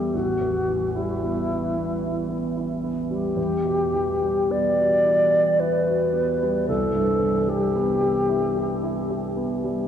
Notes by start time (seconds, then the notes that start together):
Already playing: E2 G3 B3 E4 G4
0.14 A1 F#4
0.41 E2
0.68 E3
0.94 G3 E4
1.24 B3
1.50 E4
1.77 B3
2.04 E4
2.30 B3
2.57 E4
2.84 B3
3.11 G3 G4
3.37 E2
3.64 B2
3.94 E3
4.22 G3
4.50 B3 D5
4.78 F#4
5.04 E4
5.31 G4
5.60 E4 B4
5.87 F#4
6.13 B3
6.43 G3
6.68 C2 A4
6.95 G2
7.21 E3
7.47 G3 G4
7.75 B3
8.01 G4
8.29 E4
8.55 G4
8.83 E4
9.10 G4
9.36 B3
9.64 G3